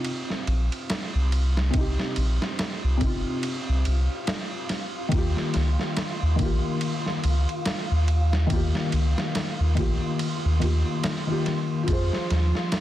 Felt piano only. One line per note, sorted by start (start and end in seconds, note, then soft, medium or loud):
0.00 1.70 C3 medium
0.00 1.74 C4 medium
0.00 1.77 D#4 medium
0.00 1.73 F4 medium
0.00 1.80 G4 loud
1.70 2.95 C3 medium
1.70 2.97 C4 medium
1.77 2.98 D#4 medium
1.77 3.00 G4 medium
2.97 5.06 C3 medium
2.97 5.08 C4 medium
3.04 5.10 D#4 medium
3.04 5.11 F4 medium
5.09 6.33 D#3 medium
5.09 6.35 A#3 medium
5.15 6.36 F4 medium
5.15 6.38 G4 loud
6.36 8.45 D#3 medium
6.36 8.46 A#3 medium
6.42 8.48 F4 medium
6.42 8.49 G4 medium
8.47 9.71 D#3 medium
8.47 9.73 A#3 medium
8.53 9.74 F4 medium
8.53 9.76 G4 loud
9.75 10.57 D#3 medium
9.75 10.58 A#3 medium
9.75 10.59 F4 medium
9.80 10.60 G4 medium
10.60 11.22 D#3 medium
10.60 11.23 A#3 medium
10.60 11.24 F4 medium
10.64 11.24 G4 medium
11.27 11.83 D#3 medium
11.27 11.84 A#3 medium
11.27 11.85 F4 medium
11.32 11.86 G4 loud
11.83 12.80 F3 medium
11.83 12.80 F4 medium
11.90 12.80 G#4 medium
11.90 12.80 C5 loud